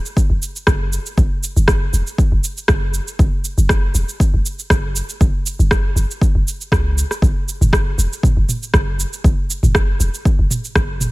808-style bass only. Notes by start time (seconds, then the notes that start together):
0.30 F#1
0.67 F#1
1.17 F#1
1.57 F#1
1.93 E1
2.32 F#1
2.69 F#1
3.19 F#1
3.58 F#1
3.95 E1
4.34 F#1
4.70 F#1
5.21 F#1
5.59 F#1
5.96 F#1
6.35 F#1
6.72 C#2
7.22 F#1
7.61 F#1
7.98 E1
8.37 F#1
8.74 F#1
9.24 F#1
9.63 F#1
10.00 E1
10.39 F#1
10.76 F#1